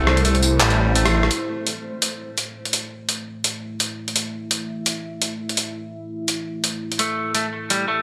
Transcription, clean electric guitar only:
0, 0, Header, 1, 2, 480
1, 0, Start_track
1, 0, Key_signature, 0, "minor"
1, 0, Tempo, 355030
1, 1774, Time_signature, 4, 2, 24, 8
1, 10843, End_track
2, 0, Start_track
2, 0, Title_t, "Clean electric guitar"
2, 0, Program_c, 0, 27
2, 0, Note_on_c, 0, 57, 84
2, 314, Note_off_c, 0, 57, 0
2, 335, Note_on_c, 0, 57, 77
2, 485, Note_off_c, 0, 57, 0
2, 819, Note_on_c, 0, 55, 85
2, 1276, Note_off_c, 0, 55, 0
2, 1295, Note_on_c, 0, 57, 79
2, 1754, Note_off_c, 0, 57, 0
2, 9457, Note_on_c, 0, 57, 78
2, 9915, Note_off_c, 0, 57, 0
2, 9933, Note_on_c, 0, 57, 73
2, 10084, Note_off_c, 0, 57, 0
2, 10418, Note_on_c, 0, 55, 80
2, 10635, Note_off_c, 0, 55, 0
2, 10655, Note_on_c, 0, 57, 94
2, 10843, Note_off_c, 0, 57, 0
2, 10843, End_track
0, 0, End_of_file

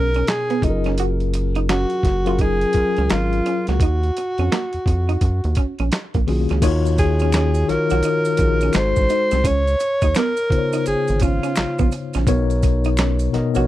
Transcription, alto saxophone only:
0, 0, Header, 1, 2, 480
1, 0, Start_track
1, 0, Key_signature, 6, "major"
1, 0, Tempo, 705882
1, 664, Time_signature, 4, 2, 24, 8
1, 9297, End_track
2, 0, Start_track
2, 0, Title_t, "Alto saxophone"
2, 0, Program_c, 0, 65
2, 0, Note_on_c, 0, 70, 93
2, 193, Note_on_c, 0, 68, 89
2, 203, Note_off_c, 0, 70, 0
2, 433, Note_on_c, 0, 63, 73
2, 443, Note_off_c, 0, 68, 0
2, 668, Note_off_c, 0, 63, 0
2, 1156, Note_on_c, 0, 66, 92
2, 1637, Note_on_c, 0, 68, 94
2, 1648, Note_off_c, 0, 66, 0
2, 2118, Note_on_c, 0, 65, 89
2, 2128, Note_off_c, 0, 68, 0
2, 2500, Note_off_c, 0, 65, 0
2, 2506, Note_on_c, 0, 66, 73
2, 4003, Note_off_c, 0, 66, 0
2, 4752, Note_on_c, 0, 68, 85
2, 5229, Note_on_c, 0, 70, 90
2, 5239, Note_off_c, 0, 68, 0
2, 5953, Note_on_c, 0, 72, 96
2, 5963, Note_off_c, 0, 70, 0
2, 6439, Note_on_c, 0, 73, 96
2, 6449, Note_off_c, 0, 72, 0
2, 6909, Note_on_c, 0, 70, 96
2, 6919, Note_off_c, 0, 73, 0
2, 7386, Note_off_c, 0, 70, 0
2, 7392, Note_on_c, 0, 68, 85
2, 7632, Note_on_c, 0, 65, 77
2, 7642, Note_off_c, 0, 68, 0
2, 8108, Note_off_c, 0, 65, 0
2, 9297, End_track
0, 0, End_of_file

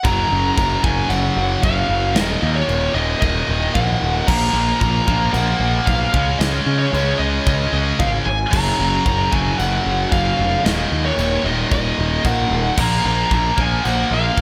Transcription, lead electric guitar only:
0, 0, Header, 1, 2, 480
1, 0, Start_track
1, 0, Key_signature, -6, "minor"
1, 0, Tempo, 530504
1, 34, Time_signature, 4, 2, 24, 8
1, 13038, End_track
2, 0, Start_track
2, 0, Title_t, "Lead electric guitar"
2, 0, Program_c, 0, 29
2, 45, Note_on_c, 0, 82, 115
2, 487, Note_off_c, 0, 82, 0
2, 505, Note_on_c, 0, 82, 114
2, 733, Note_off_c, 0, 82, 0
2, 760, Note_on_c, 0, 80, 104
2, 988, Note_on_c, 0, 78, 113
2, 1005, Note_off_c, 0, 80, 0
2, 1477, Note_off_c, 0, 78, 0
2, 1481, Note_on_c, 0, 77, 106
2, 1943, Note_on_c, 0, 75, 101
2, 1973, Note_off_c, 0, 77, 0
2, 2311, Note_off_c, 0, 75, 0
2, 2315, Note_on_c, 0, 73, 101
2, 2665, Note_off_c, 0, 73, 0
2, 2668, Note_on_c, 0, 75, 99
2, 2890, Note_off_c, 0, 75, 0
2, 2901, Note_on_c, 0, 75, 102
2, 3386, Note_on_c, 0, 78, 110
2, 3402, Note_off_c, 0, 75, 0
2, 3865, Note_on_c, 0, 82, 109
2, 3884, Note_off_c, 0, 78, 0
2, 4337, Note_off_c, 0, 82, 0
2, 4348, Note_on_c, 0, 82, 105
2, 4796, Note_off_c, 0, 82, 0
2, 4823, Note_on_c, 0, 78, 109
2, 5302, Note_off_c, 0, 78, 0
2, 5305, Note_on_c, 0, 77, 104
2, 5780, Note_on_c, 0, 75, 104
2, 5803, Note_off_c, 0, 77, 0
2, 6120, Note_off_c, 0, 75, 0
2, 6142, Note_on_c, 0, 73, 89
2, 6481, Note_off_c, 0, 73, 0
2, 6506, Note_on_c, 0, 75, 97
2, 6747, Note_off_c, 0, 75, 0
2, 6758, Note_on_c, 0, 75, 99
2, 6978, Note_off_c, 0, 75, 0
2, 6998, Note_on_c, 0, 75, 92
2, 7218, Note_off_c, 0, 75, 0
2, 7232, Note_on_c, 0, 77, 102
2, 7296, Note_off_c, 0, 77, 0
2, 7470, Note_on_c, 0, 80, 99
2, 7693, Note_off_c, 0, 80, 0
2, 7708, Note_on_c, 0, 82, 112
2, 8156, Note_off_c, 0, 82, 0
2, 8202, Note_on_c, 0, 82, 102
2, 8432, Note_on_c, 0, 80, 105
2, 8444, Note_off_c, 0, 82, 0
2, 8655, Note_off_c, 0, 80, 0
2, 8673, Note_on_c, 0, 78, 106
2, 9119, Note_off_c, 0, 78, 0
2, 9153, Note_on_c, 0, 77, 97
2, 9633, Note_on_c, 0, 75, 99
2, 9647, Note_off_c, 0, 77, 0
2, 9968, Note_off_c, 0, 75, 0
2, 10001, Note_on_c, 0, 73, 91
2, 10332, Note_off_c, 0, 73, 0
2, 10363, Note_on_c, 0, 75, 89
2, 10594, Note_off_c, 0, 75, 0
2, 10605, Note_on_c, 0, 75, 99
2, 11047, Note_off_c, 0, 75, 0
2, 11092, Note_on_c, 0, 78, 99
2, 11578, Note_off_c, 0, 78, 0
2, 11582, Note_on_c, 0, 82, 106
2, 11793, Note_off_c, 0, 82, 0
2, 11818, Note_on_c, 0, 82, 109
2, 12031, Note_off_c, 0, 82, 0
2, 12074, Note_on_c, 0, 82, 97
2, 12302, Note_off_c, 0, 82, 0
2, 12308, Note_on_c, 0, 80, 96
2, 12525, Note_off_c, 0, 80, 0
2, 12528, Note_on_c, 0, 78, 98
2, 12771, Note_off_c, 0, 78, 0
2, 12790, Note_on_c, 0, 77, 96
2, 13038, Note_off_c, 0, 77, 0
2, 13038, End_track
0, 0, End_of_file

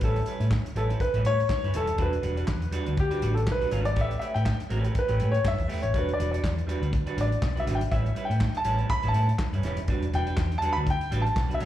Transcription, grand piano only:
0, 0, Header, 1, 2, 480
1, 0, Start_track
1, 0, Tempo, 493016
1, 17, Time_signature, 4, 2, 24, 8
1, 11344, End_track
2, 0, Start_track
2, 0, Title_t, "Grand piano"
2, 0, Program_c, 0, 0
2, 37, Note_on_c, 0, 69, 70
2, 251, Note_off_c, 0, 69, 0
2, 749, Note_on_c, 0, 69, 80
2, 802, Note_off_c, 0, 69, 0
2, 981, Note_on_c, 0, 71, 89
2, 1227, Note_off_c, 0, 71, 0
2, 1231, Note_on_c, 0, 73, 108
2, 1716, Note_on_c, 0, 69, 92
2, 1720, Note_off_c, 0, 73, 0
2, 1955, Note_off_c, 0, 69, 0
2, 1968, Note_on_c, 0, 71, 85
2, 2636, Note_off_c, 0, 71, 0
2, 2919, Note_on_c, 0, 67, 84
2, 3239, Note_off_c, 0, 67, 0
2, 3254, Note_on_c, 0, 69, 80
2, 3302, Note_off_c, 0, 69, 0
2, 3423, Note_on_c, 0, 71, 98
2, 3731, Note_off_c, 0, 71, 0
2, 3752, Note_on_c, 0, 74, 91
2, 3891, Note_off_c, 0, 74, 0
2, 3904, Note_on_c, 0, 76, 94
2, 4047, Note_off_c, 0, 76, 0
2, 4083, Note_on_c, 0, 76, 90
2, 4131, Note_off_c, 0, 76, 0
2, 4229, Note_on_c, 0, 79, 90
2, 4431, Note_off_c, 0, 79, 0
2, 4855, Note_on_c, 0, 71, 90
2, 5168, Note_off_c, 0, 71, 0
2, 5175, Note_on_c, 0, 73, 88
2, 5323, Note_off_c, 0, 73, 0
2, 5333, Note_on_c, 0, 76, 106
2, 5647, Note_off_c, 0, 76, 0
2, 5669, Note_on_c, 0, 73, 85
2, 5810, Note_off_c, 0, 73, 0
2, 5822, Note_on_c, 0, 71, 74
2, 5966, Note_off_c, 0, 71, 0
2, 5973, Note_on_c, 0, 74, 83
2, 6122, Note_off_c, 0, 74, 0
2, 6147, Note_on_c, 0, 74, 66
2, 6349, Note_off_c, 0, 74, 0
2, 7018, Note_on_c, 0, 74, 75
2, 7395, Note_on_c, 0, 76, 80
2, 7411, Note_off_c, 0, 74, 0
2, 7538, Note_off_c, 0, 76, 0
2, 7545, Note_on_c, 0, 79, 84
2, 7594, Note_off_c, 0, 79, 0
2, 7706, Note_on_c, 0, 76, 87
2, 8032, Note_on_c, 0, 79, 83
2, 8033, Note_off_c, 0, 76, 0
2, 8325, Note_off_c, 0, 79, 0
2, 8344, Note_on_c, 0, 81, 94
2, 8663, Note_on_c, 0, 83, 113
2, 8672, Note_off_c, 0, 81, 0
2, 8827, Note_off_c, 0, 83, 0
2, 8843, Note_on_c, 0, 81, 96
2, 9056, Note_off_c, 0, 81, 0
2, 9882, Note_on_c, 0, 79, 98
2, 10282, Note_off_c, 0, 79, 0
2, 10300, Note_on_c, 0, 81, 95
2, 10444, Note_off_c, 0, 81, 0
2, 10444, Note_on_c, 0, 83, 106
2, 10492, Note_off_c, 0, 83, 0
2, 10614, Note_on_c, 0, 79, 110
2, 10919, Note_on_c, 0, 81, 88
2, 10926, Note_off_c, 0, 79, 0
2, 11207, Note_off_c, 0, 81, 0
2, 11239, Note_on_c, 0, 76, 84
2, 11344, Note_off_c, 0, 76, 0
2, 11344, End_track
0, 0, End_of_file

